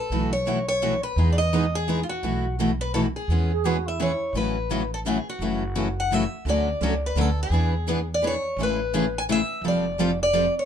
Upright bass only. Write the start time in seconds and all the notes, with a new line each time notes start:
0.10 B1
1.16 E2
2.23 B1
3.28 E2
4.33 A1
5.39 F#1
6.45 D2
6.81 C#2
7.15 D2
7.50 E2
8.57 A1
9.62 F1